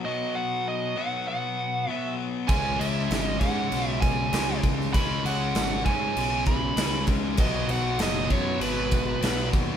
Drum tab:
CC |----------------|x-x-x-x-x-x-x-x-|x-x-x-x-x-x-x-x-|x-x-x-x-x-x-x-x-|
SD |----------------|----o-------o--o|----o-------o---|----o-------o---|
BD |----------------|o-----o---o---o-|o-----o---o---o-|o-----o---o---o-|